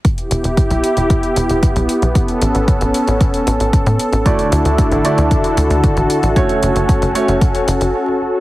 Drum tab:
HH |xxxxxxxxxxxxxxxx|xxxxxxxxxxxxxxxx|xxxxxxxxxxxxxxxx|xxxxxxxxxxxx----|
BD |o---o---o---o---|o---o---o---o---|o---o---o---o---|o---o---o-------|